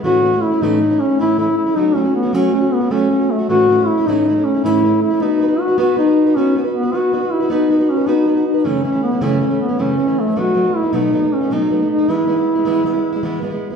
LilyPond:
<<
  \new Staff \with { instrumentName = "Duduk" } { \time 9/8 \key a \lydian \tempo 4. = 105 fis'4 e'8 dis'4 cis'8 e'8 e'8 e'8 | dis'8 cis'8 b8 cis'4 b8 cis'4 a8 | fis'4 e'8 dis'4 cis'8 e'4 e'8 | dis'4 fis'8 fis'8 dis'4 cis'8 r8 b8 |
fis'4 e'8 dis'4 cis'8 dis'4 dis'8 | cis'8 cis'8 b8 cis'4 b8 cis'4 a8 | fis'4 e'8 dis'4 cis'8 dis'4 dis'8 | e'2.~ e'8 r4 | }
  \new Staff \with { instrumentName = "Steel-string acoustic guitar" } { \time 9/8 \key a \lydian <a, e a cis' e'>8 <e a cis' e'>16 <a cis' e'>8 <a cis' e'>16 <a, e a cis' e'>8 <e a cis' e'>16 <a cis' e'>8 <a cis' e'>16 <a, e a cis' e'>8 <e a cis' e'>16 <cis' e'>8 <a cis' e'>16 | <fis a cis' fis'>8 <fis a cis' fis'>16 <a cis' fis'>8 <a cis' fis'>16 <fis a cis' fis'>8 <fis a cis' fis'>16 <a cis' fis'>8 <a cis' fis'>16 <fis a cis' fis'>8 <fis a cis' fis'>16 <a cis' fis'>8 <a cis' fis'>16 | <a, e a cis' e'>8 <e a cis' e'>16 <a cis' e'>8 <a cis' e'>16 <a, e a cis' e'>8 <e a cis' e'>16 <a cis' e'>8 <a cis' e'>16 <a, e a cis' e'>8 <e a cis' e'>16 <a cis' e'>8 <a cis' e'>16 | <b dis' fis' b'>8 <b dis' fis' b'>16 <dis' fis' b'>8 <dis' fis' b'>16 <b dis' fis' b'>8 <b dis' fis' b'>16 <dis' fis' b'>8 <dis' fis' b'>16 <b dis' fis' b'>8 <b dis' fis' b'>16 <dis' fis' b'>8 <dis' fis' b'>16 |
<b dis' fis' b'>8 <b dis' fis' b'>16 <dis' fis' b'>8 <dis' fis' b'>16 <b dis' fis' b'>8 <b dis' fis' b'>16 <dis' fis' b'>8 <dis' fis' b'>16 <b dis' fis' b'>8 <b dis' fis' b'>16 <dis' fis' b'>8 <dis' fis' b'>16 | <fis, cis e a cis' e'>8 <e a cis' e'>16 <e a cis' e'>8 <e a cis' e'>16 <fis, cis e a cis' e'>8 <e a cis' e'>16 <e a cis' e'>8 <e a cis' e'>16 <fis, cis e a cis' e'>8 <e a cis' e'>16 <e a cis' e'>8 <e a cis' e'>16 | <b, fis a b dis'>8 <fis a b dis'>16 <a b dis'>8 <a b dis'>16 <b, fis a b dis'>8 <fis a b dis'>16 <a b dis'>8 <a b dis'>16 <b, fis a b dis'>8 <fis a b dis'>16 <a b dis'>8 <a b dis'>16 | <e gis b e'>8 <e gis b e'>16 <gis b e'>8 <gis b e'>16 <e gis b e'>8 <e gis b e'>16 <gis b e'>8 <gis b e'>16 <e gis b e'>8 <e gis b e'>16 <gis b e'>8 <b e'>16 | }
>>